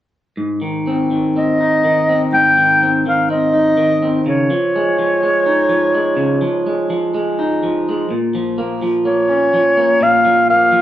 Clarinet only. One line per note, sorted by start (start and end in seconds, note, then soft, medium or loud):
1.36 2.28 D#5 medium
2.34 3.02 G5 medium
3.08 3.29 F5 medium
3.31 4.22 D#5 medium
4.28 7.11 C#5 medium
9.06 10.04 C#5 medium
10.03 10.49 F5 medium
10.50 10.82 F5 medium